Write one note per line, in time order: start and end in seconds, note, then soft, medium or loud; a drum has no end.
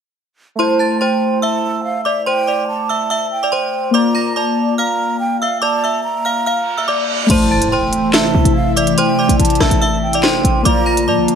0.55 3.89 A3 medium
0.55 3.90 E4 medium
0.55 0.98 A5 medium
0.55 0.78 C6 medium
0.60 0.79 C5 medium
0.60 3.92 C5 medium
0.79 0.99 A5 medium
0.79 1.00 A6 medium
1.00 1.40 C5 medium
1.00 1.40 G5 medium
1.00 1.40 C6 medium
1.42 2.02 E5 medium
1.42 1.82 A5 medium
1.42 2.02 E6 medium
1.84 2.04 F5 medium
2.05 2.25 D5 medium
2.05 2.25 E5 medium
2.05 2.25 D6 medium
2.26 2.46 C5 medium
2.26 2.66 G5 loud
2.26 2.46 C6 medium
2.47 2.87 D5 medium
2.47 2.87 D6 medium
2.68 3.27 A5 medium
2.89 3.10 E5 medium
2.89 3.09 E6 medium
3.10 3.40 E5 medium
3.10 3.40 E6 medium
3.31 3.90 G5 medium
3.43 3.53 D5 medium
3.43 3.52 D6 medium
3.52 3.92 C5 medium
3.52 3.91 C6 medium
3.91 7.24 A#3 medium
3.91 7.26 F4 medium
3.91 4.14 D5 medium
3.91 4.34 A#5 loud
3.91 4.14 D6 loud
3.97 7.27 D5 medium
4.15 4.35 A#5 medium
4.15 4.35 A#6 medium
4.36 4.76 D5 medium
4.36 4.75 A5 medium
4.36 4.76 D6 medium
4.78 5.38 F5 medium
4.78 5.17 A#5 medium
4.78 5.37 F6 medium
5.20 5.40 G5 medium
5.41 5.62 E5 medium
5.41 5.61 F5 medium
5.41 5.61 E6 medium
5.62 5.82 D5 medium
5.62 6.01 A5 loud
5.62 5.82 D6 medium
5.84 6.23 E5 medium
5.84 6.23 E6 medium
6.04 6.84 A#5 medium
6.25 6.45 F5 medium
6.25 6.45 F6 medium
6.46 6.76 F5 medium
6.46 6.76 F6 medium
6.46 reverse cymbal medium
6.78 6.88 E5 medium
6.78 6.87 E6 medium
6.88 7.28 D5 medium
6.88 7.27 D6 medium
7.27 7.63 A1 loud
7.27 10.62 C3 medium
7.27 10.62 E3 medium
7.27 10.60 A3 medium
7.27 10.62 A3 medium
7.27 10.62 E4 loud
7.27 10.61 E4 medium
7.27 7.69 A5 medium
7.27 7.50 C6 medium
7.27 closed hi-hat medium
7.27 crash loud
7.27 impact medium
7.31 7.50 C5 medium
7.31 10.63 C5 medium
7.51 7.71 A5 medium
7.51 7.71 A6 medium
7.61 7.78 A2 loud
7.61 closed hi-hat medium
7.72 8.12 C5 medium
7.72 8.11 G5 medium
7.72 8.11 C6 medium
7.77 7.92 A1 loud
7.93 closed hi-hat medium
8.14 8.73 E5 medium
8.14 8.53 A5 medium
8.14 8.73 E6 medium
8.14 snare loud
8.14 clap medium
8.14 closed hi-hat medium
8.35 8.45 C2 loud
8.45 8.95 A1 loud
8.45 closed hi-hat medium
8.56 8.76 F5 medium
8.76 8.97 D5 medium
8.76 8.97 E5 medium
8.76 8.96 D6 medium
8.76 closed hi-hat medium
8.87 closed hi-hat medium
8.98 9.18 C5 medium
8.98 9.37 G5 loud
8.98 9.17 C6 loud
8.98 closed hi-hat medium
9.19 9.59 D5 medium
9.19 9.58 D6 medium
9.29 9.39 A1 loud
9.29 closed hi-hat medium
9.39 9.60 A1 loud
9.39 9.99 A5 medium
9.39 closed hi-hat medium
9.45 closed hi-hat medium
9.50 closed hi-hat medium
9.55 closed hi-hat soft
9.60 9.71 A1 loud
9.60 9.81 E5 medium
9.60 9.80 E6 medium
9.60 cross-stick loud
9.60 snare medium
9.71 10.25 A1 loud
9.71 closed hi-hat loud
9.82 10.12 E5 medium
9.82 10.11 E6 medium
10.03 10.62 G5 medium
10.13 10.24 D5 medium
10.13 10.24 D6 medium
10.13 closed hi-hat medium
10.23 10.43 G1 loud
10.23 10.63 C5 medium
10.23 10.63 C6 loud
10.23 snare loud
10.23 clap medium
10.44 10.65 A1 loud
10.44 closed hi-hat medium
10.63 11.09 A#1 loud
10.63 11.35 D3 medium
10.63 11.35 F3 medium
10.63 11.35 A#3 medium
10.63 11.35 F4 loud
10.63 11.35 F4 medium
10.63 10.86 D5 medium
10.63 11.05 A#5 loud
10.63 10.85 D6 loud
10.63 closed hi-hat medium
10.69 11.35 D5 medium
10.86 11.06 A#5 medium
10.86 11.06 A#6 medium
10.97 closed hi-hat medium
11.07 11.19 A#2 loud
11.07 11.35 D5 medium
11.07 11.35 A5 medium
11.07 11.35 D6 medium
11.18 11.28 A#1 loud
11.28 closed hi-hat medium